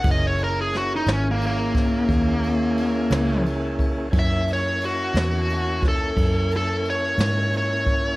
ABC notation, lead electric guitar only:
X:1
M:12/8
L:1/16
Q:3/8=59
K:F#mix
V:1 name="Lead electric guitar"
d c A G F D C A, A,12 z4 | e2 c2 F6 =A4 A2 c4 c4 |]